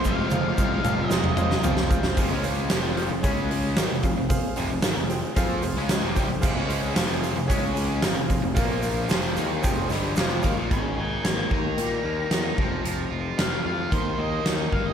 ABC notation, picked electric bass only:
X:1
M:4/4
L:1/16
Q:1/4=112
K:Fm
V:1 name="Picked electric bass" clef=bass
F,,,2 F,,,2 C,,2 F,,,2 F,,,2 F,,,2 F,,,2 F,,,2 | F,,, D,,3 F,,,3 F,,, D,,4 A,,, F,,, F,,, F,,,- | F,,, z F,,, F,,, A,,, F,,,2 z F,,2 F,,, D,,2 F,,, C,, F,,, | F,,, D,,3 F,,,3 F,,, D,,4 A,,, F,,, F,,, F,,, |
B,,,4 F,,,2 E,,2 F,,,2 G,,,2 F,,,2 E,, B,,, | A,,,2 A,,,2 A,,,2 E,,2 B,,2 E,,2 =E,,2 F,,,2 | F,,,2 F,,,2 F,,,2 F,,2 E,,2 E,,2 E,,2 G,,,2 |]